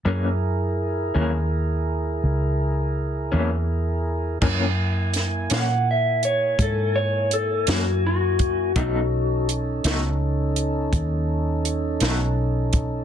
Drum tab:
CC |------------|x-----------|------------|
HH |------------|--xx-xx-xx-x|x-xx-xx-xx-x|
SD |------------|--oo-----o--|---o-----o--|
BD |------------|o-----o----o|o-----o----o|